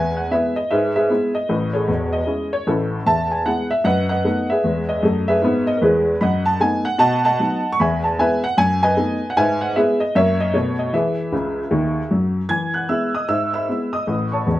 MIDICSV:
0, 0, Header, 1, 2, 480
1, 0, Start_track
1, 0, Key_signature, 4, "major"
1, 0, Tempo, 393185
1, 1818, Time_signature, 4, 2, 24, 8
1, 17820, End_track
2, 0, Start_track
2, 0, Title_t, "Upright piano"
2, 0, Program_c, 0, 0
2, 0, Note_on_c, 0, 40, 66
2, 0, Note_on_c, 0, 71, 60
2, 0, Note_on_c, 0, 76, 58
2, 0, Note_on_c, 0, 80, 82
2, 116, Control_c, 0, 64, 127
2, 177, Note_off_c, 0, 76, 0
2, 179, Note_off_c, 0, 71, 0
2, 191, Note_off_c, 0, 80, 0
2, 205, Note_on_c, 0, 78, 56
2, 296, Note_off_c, 0, 40, 0
2, 377, Note_on_c, 0, 56, 37
2, 378, Note_off_c, 0, 78, 0
2, 382, Note_on_c, 0, 59, 44
2, 385, Note_on_c, 0, 76, 77
2, 388, Control_c, 0, 64, 0
2, 394, Note_on_c, 0, 64, 41
2, 400, Note_on_c, 0, 71, 55
2, 401, Note_on_c, 0, 68, 54
2, 641, Note_off_c, 0, 56, 0
2, 644, Note_off_c, 0, 59, 0
2, 654, Note_off_c, 0, 64, 0
2, 670, Note_off_c, 0, 68, 0
2, 670, Note_off_c, 0, 71, 0
2, 683, Note_off_c, 0, 76, 0
2, 686, Note_on_c, 0, 75, 68
2, 859, Note_off_c, 0, 75, 0
2, 861, Note_on_c, 0, 76, 72
2, 868, Note_on_c, 0, 44, 70
2, 881, Note_on_c, 0, 71, 61
2, 888, Note_on_c, 0, 68, 60
2, 1081, Control_c, 0, 64, 127
2, 1150, Note_off_c, 0, 76, 0
2, 1151, Note_off_c, 0, 71, 0
2, 1155, Note_off_c, 0, 68, 0
2, 1168, Note_on_c, 0, 76, 72
2, 1178, Note_on_c, 0, 68, 57
2, 1181, Note_on_c, 0, 71, 54
2, 1272, Note_off_c, 0, 44, 0
2, 1340, Note_on_c, 0, 56, 40
2, 1345, Note_on_c, 0, 59, 39
2, 1348, Note_on_c, 0, 64, 40
2, 1354, Control_c, 0, 64, 0
2, 1604, Note_off_c, 0, 56, 0
2, 1607, Note_off_c, 0, 59, 0
2, 1610, Note_off_c, 0, 64, 0
2, 1617, Note_off_c, 0, 68, 0
2, 1618, Note_off_c, 0, 71, 0
2, 1644, Note_on_c, 0, 75, 72
2, 1645, Note_off_c, 0, 76, 0
2, 1820, Note_on_c, 0, 45, 63
2, 1822, Note_on_c, 0, 33, 62
2, 2051, Control_c, 0, 64, 127
2, 2116, Note_on_c, 0, 73, 54
2, 2124, Note_off_c, 0, 75, 0
2, 2129, Note_on_c, 0, 69, 47
2, 2132, Note_on_c, 0, 68, 47
2, 2205, Note_off_c, 0, 33, 0
2, 2205, Note_off_c, 0, 45, 0
2, 2292, Note_on_c, 0, 40, 66
2, 2296, Note_on_c, 0, 28, 55
2, 2317, Control_c, 0, 64, 0
2, 2573, Note_off_c, 0, 69, 0
2, 2575, Note_off_c, 0, 68, 0
2, 2595, Note_on_c, 0, 75, 74
2, 2600, Note_off_c, 0, 73, 0
2, 2680, Note_off_c, 0, 40, 0
2, 2682, Note_off_c, 0, 28, 0
2, 2765, Note_on_c, 0, 56, 42
2, 2766, Note_on_c, 0, 64, 40
2, 2771, Note_on_c, 0, 61, 47
2, 3034, Note_off_c, 0, 56, 0
2, 3035, Note_off_c, 0, 64, 0
2, 3038, Note_off_c, 0, 61, 0
2, 3080, Note_off_c, 0, 75, 0
2, 3086, Note_on_c, 0, 73, 76
2, 3259, Note_on_c, 0, 33, 57
2, 3261, Note_on_c, 0, 45, 60
2, 3262, Note_on_c, 0, 69, 66
2, 3263, Note_off_c, 0, 73, 0
2, 3276, Note_on_c, 0, 61, 47
2, 3276, Note_on_c, 0, 64, 49
2, 3645, Note_off_c, 0, 33, 0
2, 3646, Note_off_c, 0, 45, 0
2, 3716, Note_off_c, 0, 61, 0
2, 3716, Note_off_c, 0, 64, 0
2, 3734, Note_on_c, 0, 40, 59
2, 3742, Note_off_c, 0, 69, 0
2, 3742, Note_on_c, 0, 81, 88
2, 3748, Note_on_c, 0, 76, 56
2, 3965, Control_c, 0, 64, 127
2, 4027, Note_off_c, 0, 76, 0
2, 4045, Note_off_c, 0, 81, 0
2, 4046, Note_on_c, 0, 80, 52
2, 4146, Note_off_c, 0, 40, 0
2, 4220, Note_on_c, 0, 78, 78
2, 4221, Note_on_c, 0, 59, 45
2, 4223, Note_off_c, 0, 80, 0
2, 4223, Note_on_c, 0, 56, 40
2, 4235, Note_on_c, 0, 64, 44
2, 4238, Control_c, 0, 64, 0
2, 4486, Note_off_c, 0, 59, 0
2, 4488, Note_off_c, 0, 56, 0
2, 4496, Note_off_c, 0, 64, 0
2, 4524, Note_on_c, 0, 76, 77
2, 4525, Note_off_c, 0, 78, 0
2, 4692, Note_on_c, 0, 42, 72
2, 4698, Note_on_c, 0, 78, 84
2, 4703, Note_off_c, 0, 76, 0
2, 4707, Note_on_c, 0, 75, 64
2, 4717, Note_on_c, 0, 71, 65
2, 4945, Control_c, 0, 64, 127
2, 4977, Note_off_c, 0, 78, 0
2, 4987, Note_off_c, 0, 75, 0
2, 4993, Note_off_c, 0, 71, 0
2, 4995, Note_on_c, 0, 78, 82
2, 5014, Note_on_c, 0, 71, 57
2, 5018, Note_on_c, 0, 75, 59
2, 5105, Note_off_c, 0, 42, 0
2, 5183, Note_on_c, 0, 57, 46
2, 5189, Note_on_c, 0, 59, 38
2, 5193, Note_on_c, 0, 63, 44
2, 5196, Control_c, 0, 64, 0
2, 5447, Note_off_c, 0, 57, 0
2, 5451, Note_off_c, 0, 59, 0
2, 5455, Note_off_c, 0, 63, 0
2, 5457, Note_off_c, 0, 71, 0
2, 5459, Note_off_c, 0, 75, 0
2, 5481, Note_off_c, 0, 78, 0
2, 5490, Note_on_c, 0, 76, 72
2, 5511, Note_on_c, 0, 68, 55
2, 5512, Note_on_c, 0, 71, 53
2, 5664, Note_on_c, 0, 40, 61
2, 5683, Note_on_c, 0, 56, 66
2, 5880, Control_c, 0, 64, 127
2, 5946, Note_off_c, 0, 68, 0
2, 5947, Note_off_c, 0, 71, 0
2, 5966, Note_on_c, 0, 75, 70
2, 5969, Note_off_c, 0, 76, 0
2, 6048, Note_off_c, 0, 40, 0
2, 6060, Note_off_c, 0, 56, 0
2, 6138, Note_on_c, 0, 42, 67
2, 6157, Control_c, 0, 64, 0
2, 6164, Note_on_c, 0, 57, 61
2, 6445, Note_on_c, 0, 76, 81
2, 6447, Note_off_c, 0, 75, 0
2, 6455, Note_on_c, 0, 68, 56
2, 6461, Note_on_c, 0, 71, 60
2, 6524, Note_off_c, 0, 42, 0
2, 6540, Note_off_c, 0, 57, 0
2, 6613, Note_on_c, 0, 44, 66
2, 6646, Note_on_c, 0, 59, 71
2, 6898, Note_off_c, 0, 68, 0
2, 6901, Note_off_c, 0, 71, 0
2, 6924, Note_on_c, 0, 75, 78
2, 6926, Note_off_c, 0, 76, 0
2, 7002, Note_off_c, 0, 44, 0
2, 7022, Note_off_c, 0, 59, 0
2, 7040, Note_off_c, 0, 75, 0
2, 7041, Note_on_c, 0, 70, 54
2, 7099, Note_on_c, 0, 40, 64
2, 7104, Note_off_c, 0, 70, 0
2, 7104, Note_on_c, 0, 71, 67
2, 7115, Note_on_c, 0, 64, 57
2, 7121, Note_on_c, 0, 68, 57
2, 7128, Note_on_c, 0, 56, 64
2, 7485, Note_off_c, 0, 40, 0
2, 7503, Note_off_c, 0, 56, 0
2, 7557, Note_off_c, 0, 64, 0
2, 7560, Note_off_c, 0, 68, 0
2, 7579, Note_on_c, 0, 83, 81
2, 7581, Note_on_c, 0, 42, 70
2, 7585, Note_off_c, 0, 71, 0
2, 7594, Note_on_c, 0, 75, 62
2, 7602, Note_on_c, 0, 78, 66
2, 7826, Control_c, 0, 64, 127
2, 7871, Note_off_c, 0, 75, 0
2, 7875, Note_off_c, 0, 78, 0
2, 7881, Note_on_c, 0, 81, 80
2, 7884, Note_off_c, 0, 83, 0
2, 7990, Note_off_c, 0, 42, 0
2, 8061, Note_off_c, 0, 81, 0
2, 8061, Note_on_c, 0, 57, 45
2, 8068, Note_on_c, 0, 80, 85
2, 8074, Note_on_c, 0, 59, 43
2, 8077, Control_c, 0, 64, 0
2, 8081, Note_on_c, 0, 63, 57
2, 8326, Note_off_c, 0, 57, 0
2, 8336, Note_off_c, 0, 59, 0
2, 8341, Note_off_c, 0, 63, 0
2, 8362, Note_on_c, 0, 78, 84
2, 8369, Note_off_c, 0, 80, 0
2, 8525, Note_on_c, 0, 47, 82
2, 8526, Note_off_c, 0, 78, 0
2, 8534, Note_on_c, 0, 81, 99
2, 8545, Note_on_c, 0, 78, 75
2, 8550, Note_on_c, 0, 75, 76
2, 8783, Control_c, 0, 64, 127
2, 8826, Note_off_c, 0, 78, 0
2, 8829, Note_off_c, 0, 75, 0
2, 8831, Note_off_c, 0, 81, 0
2, 8849, Note_on_c, 0, 81, 88
2, 8859, Note_on_c, 0, 75, 64
2, 8866, Note_on_c, 0, 78, 67
2, 8941, Note_off_c, 0, 47, 0
2, 9026, Note_on_c, 0, 54, 43
2, 9029, Note_on_c, 0, 59, 43
2, 9035, Control_c, 0, 64, 0
2, 9041, Note_on_c, 0, 63, 46
2, 9290, Note_off_c, 0, 54, 0
2, 9292, Note_off_c, 0, 59, 0
2, 9300, Note_off_c, 0, 63, 0
2, 9382, Note_off_c, 0, 75, 0
2, 9386, Note_off_c, 0, 78, 0
2, 9417, Note_off_c, 0, 81, 0
2, 9430, Note_on_c, 0, 85, 87
2, 9511, Note_off_c, 0, 85, 0
2, 9517, Note_on_c, 0, 40, 74
2, 9520, Note_on_c, 0, 83, 78
2, 9534, Note_on_c, 0, 76, 59
2, 9536, Note_on_c, 0, 80, 64
2, 9734, Control_c, 0, 64, 127
2, 9802, Note_off_c, 0, 76, 0
2, 9802, Note_off_c, 0, 80, 0
2, 9812, Note_on_c, 0, 81, 68
2, 9814, Note_off_c, 0, 83, 0
2, 9919, Note_off_c, 0, 40, 0
2, 9987, Note_off_c, 0, 81, 0
2, 9995, Note_on_c, 0, 56, 44
2, 10000, Note_on_c, 0, 59, 45
2, 10002, Control_c, 0, 64, 0
2, 10002, Note_on_c, 0, 80, 81
2, 10014, Note_on_c, 0, 64, 48
2, 10014, Note_on_c, 0, 76, 73
2, 10017, Note_on_c, 0, 71, 72
2, 10256, Note_off_c, 0, 56, 0
2, 10259, Note_off_c, 0, 59, 0
2, 10270, Note_off_c, 0, 64, 0
2, 10281, Note_off_c, 0, 76, 0
2, 10283, Note_off_c, 0, 71, 0
2, 10295, Note_off_c, 0, 80, 0
2, 10300, Note_on_c, 0, 78, 83
2, 10468, Note_on_c, 0, 42, 76
2, 10470, Note_off_c, 0, 78, 0
2, 10473, Note_on_c, 0, 80, 104
2, 10703, Control_c, 0, 64, 127
2, 10759, Note_off_c, 0, 80, 0
2, 10777, Note_on_c, 0, 80, 90
2, 10790, Note_on_c, 0, 75, 75
2, 10792, Note_on_c, 0, 71, 66
2, 10874, Note_off_c, 0, 42, 0
2, 10950, Note_on_c, 0, 57, 42
2, 10953, Note_on_c, 0, 59, 38
2, 10956, Control_c, 0, 64, 0
2, 10959, Note_on_c, 0, 63, 47
2, 11211, Note_off_c, 0, 57, 0
2, 11214, Note_off_c, 0, 59, 0
2, 11219, Note_off_c, 0, 63, 0
2, 11307, Note_off_c, 0, 75, 0
2, 11308, Note_off_c, 0, 71, 0
2, 11339, Note_off_c, 0, 80, 0
2, 11353, Note_on_c, 0, 78, 77
2, 11432, Note_off_c, 0, 78, 0
2, 11436, Note_on_c, 0, 44, 76
2, 11438, Note_on_c, 0, 80, 90
2, 11453, Note_on_c, 0, 71, 64
2, 11453, Note_on_c, 0, 76, 66
2, 11655, Control_c, 0, 64, 127
2, 11720, Note_off_c, 0, 71, 0
2, 11720, Note_off_c, 0, 76, 0
2, 11732, Note_off_c, 0, 80, 0
2, 11734, Note_on_c, 0, 78, 78
2, 11838, Note_off_c, 0, 44, 0
2, 11907, Note_off_c, 0, 78, 0
2, 11914, Note_on_c, 0, 76, 81
2, 11918, Note_on_c, 0, 56, 42
2, 11919, Control_c, 0, 64, 0
2, 11921, Note_on_c, 0, 59, 45
2, 11925, Note_on_c, 0, 64, 49
2, 11935, Note_on_c, 0, 68, 62
2, 11937, Note_on_c, 0, 71, 58
2, 12177, Note_off_c, 0, 56, 0
2, 12180, Note_off_c, 0, 59, 0
2, 12182, Note_off_c, 0, 64, 0
2, 12200, Note_off_c, 0, 68, 0
2, 12202, Note_off_c, 0, 71, 0
2, 12210, Note_off_c, 0, 76, 0
2, 12212, Note_on_c, 0, 75, 77
2, 12385, Note_off_c, 0, 75, 0
2, 12396, Note_on_c, 0, 42, 80
2, 12398, Note_on_c, 0, 58, 39
2, 12401, Note_on_c, 0, 61, 51
2, 12401, Note_on_c, 0, 76, 91
2, 12408, Note_on_c, 0, 70, 67
2, 12409, Note_on_c, 0, 73, 75
2, 12412, Note_on_c, 0, 66, 42
2, 12604, Control_c, 0, 64, 127
2, 12657, Note_off_c, 0, 58, 0
2, 12659, Note_off_c, 0, 61, 0
2, 12667, Note_off_c, 0, 66, 0
2, 12676, Note_off_c, 0, 70, 0
2, 12677, Note_off_c, 0, 73, 0
2, 12693, Note_off_c, 0, 76, 0
2, 12702, Note_on_c, 0, 75, 80
2, 12797, Note_off_c, 0, 42, 0
2, 12863, Note_on_c, 0, 57, 41
2, 12866, Note_on_c, 0, 47, 68
2, 12866, Note_on_c, 0, 73, 70
2, 12870, Note_off_c, 0, 75, 0
2, 12874, Note_on_c, 0, 59, 38
2, 12876, Control_c, 0, 64, 0
2, 12880, Note_on_c, 0, 66, 37
2, 13094, Control_c, 0, 64, 127
2, 13126, Note_off_c, 0, 57, 0
2, 13134, Note_off_c, 0, 59, 0
2, 13138, Note_off_c, 0, 66, 0
2, 13165, Note_off_c, 0, 73, 0
2, 13172, Note_on_c, 0, 75, 69
2, 13271, Note_off_c, 0, 47, 0
2, 13342, Note_on_c, 0, 52, 67
2, 13344, Note_off_c, 0, 75, 0
2, 13352, Note_on_c, 0, 76, 71
2, 13355, Control_c, 0, 64, 0
2, 13364, Note_on_c, 0, 68, 52
2, 13367, Note_on_c, 0, 71, 50
2, 13568, Control_c, 0, 64, 127
2, 13748, Note_off_c, 0, 52, 0
2, 13823, Note_on_c, 0, 37, 59
2, 13825, Note_on_c, 0, 49, 60
2, 13837, Control_c, 0, 64, 0
2, 14180, Note_off_c, 0, 37, 0
2, 14182, Note_off_c, 0, 49, 0
2, 14294, Note_on_c, 0, 39, 65
2, 14296, Note_on_c, 0, 51, 66
2, 14654, Note_off_c, 0, 39, 0
2, 14656, Note_off_c, 0, 51, 0
2, 14740, Note_off_c, 0, 68, 0
2, 14741, Note_off_c, 0, 71, 0
2, 14779, Note_on_c, 0, 54, 59
2, 14782, Note_off_c, 0, 76, 0
2, 14782, Note_on_c, 0, 42, 56
2, 15137, Note_off_c, 0, 54, 0
2, 15139, Note_off_c, 0, 42, 0
2, 15246, Note_on_c, 0, 52, 61
2, 15248, Note_on_c, 0, 92, 74
2, 15266, Note_on_c, 0, 80, 53
2, 15486, Control_c, 0, 64, 127
2, 15542, Note_off_c, 0, 80, 0
2, 15553, Note_off_c, 0, 92, 0
2, 15553, Note_on_c, 0, 90, 59
2, 15571, Note_on_c, 0, 78, 47
2, 15657, Note_off_c, 0, 52, 0
2, 15729, Note_off_c, 0, 78, 0
2, 15732, Note_off_c, 0, 90, 0
2, 15735, Note_on_c, 0, 88, 66
2, 15737, Note_on_c, 0, 56, 39
2, 15737, Note_on_c, 0, 59, 39
2, 15743, Control_c, 0, 64, 0
2, 15745, Note_on_c, 0, 76, 47
2, 15748, Note_on_c, 0, 64, 41
2, 16000, Note_off_c, 0, 56, 0
2, 16000, Note_off_c, 0, 59, 0
2, 16008, Note_off_c, 0, 64, 0
2, 16021, Note_off_c, 0, 76, 0
2, 16037, Note_off_c, 0, 88, 0
2, 16048, Note_on_c, 0, 87, 69
2, 16065, Note_on_c, 0, 75, 53
2, 16216, Note_off_c, 0, 75, 0
2, 16216, Note_on_c, 0, 44, 63
2, 16219, Note_off_c, 0, 87, 0
2, 16220, Note_on_c, 0, 88, 78
2, 16238, Note_on_c, 0, 76, 58
2, 16454, Control_c, 0, 64, 127
2, 16507, Note_off_c, 0, 76, 0
2, 16507, Note_off_c, 0, 88, 0
2, 16526, Note_on_c, 0, 88, 62
2, 16541, Note_on_c, 0, 76, 54
2, 16544, Note_on_c, 0, 83, 55
2, 16622, Note_off_c, 0, 44, 0
2, 16703, Control_c, 0, 64, 0
2, 16705, Note_on_c, 0, 56, 33
2, 16715, Note_on_c, 0, 59, 34
2, 16725, Note_on_c, 0, 64, 42
2, 16965, Note_off_c, 0, 56, 0
2, 16972, Note_off_c, 0, 59, 0
2, 16974, Note_off_c, 0, 76, 0
2, 16976, Note_off_c, 0, 83, 0
2, 16979, Note_off_c, 0, 64, 0
2, 16999, Note_off_c, 0, 88, 0
2, 17004, Note_on_c, 0, 87, 64
2, 17021, Note_on_c, 0, 75, 51
2, 17181, Note_on_c, 0, 33, 55
2, 17186, Note_on_c, 0, 45, 54
2, 17406, Control_c, 0, 64, 127
2, 17453, Note_off_c, 0, 75, 0
2, 17478, Note_off_c, 0, 87, 0
2, 17482, Note_on_c, 0, 85, 52
2, 17497, Note_on_c, 0, 81, 43
2, 17499, Note_on_c, 0, 73, 44
2, 17559, Note_off_c, 0, 33, 0
2, 17563, Note_off_c, 0, 45, 0
2, 17654, Note_on_c, 0, 28, 54
2, 17661, Note_on_c, 0, 40, 59
2, 17664, Control_c, 0, 64, 0
2, 17820, Note_off_c, 0, 28, 0
2, 17820, Note_off_c, 0, 40, 0
2, 17820, Note_off_c, 0, 73, 0
2, 17820, Note_off_c, 0, 81, 0
2, 17820, Note_off_c, 0, 85, 0
2, 17820, End_track
0, 0, End_of_file